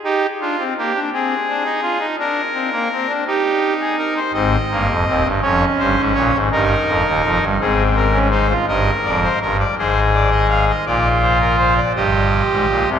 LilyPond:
<<
  \new Staff \with { instrumentName = "Pipe organ" } { \time 6/8 \key aes \major \tempo 4. = 55 << { ees'8 d'16 c'16 bes16 d'16 c'8 d'16 ees'16 f'16 ees'16 | d'8 c'16 bes16 c'16 d'16 ees'4. | c'8 bes8 c'8 des'4. | ees'4. c'8. des'16 ees'16 f'16 |
ees''8 d''16 c''16 bes'16 d''16 c''8 d''16 ees''16 f''16 ees''16 | d''8 c''16 bes'16 c''16 d''16 ees''4. | } \\ { g'8 f'8 g'8 aes'4. | bes'4. g'8. aes'16 bes'16 c''16 | ees''4. des''8 c''8 des''8 | bes'4. aes'8 bes'8 c''8 |
bes'4. aes'4. | f'4. g'4. | } >> }
  \new Staff \with { instrumentName = "Pipe organ" } { \clef bass \time 6/8 \key aes \major r2. | r2. | <aes,, aes,>8 <g,, g,>16 <f,, f,>16 <ees,, ees,>16 <g,, g,>16 <f,, f,>8 <g,, g,>16 <aes,, aes,>16 <bes,, bes,>16 <aes,, aes,>16 | <g,, g,>8 <f,, f,>16 <ees,, ees,>16 <f,, f,>16 <g,, g,>16 <aes,, aes,>4. |
<g,, g,>8 <f,, f,>8 <g,, g,>8 <aes,, aes,>4. | <bes,, bes,>4. <g,, g,>8. <aes,, aes,>16 <bes,, bes,>16 <c, c>16 | }
>>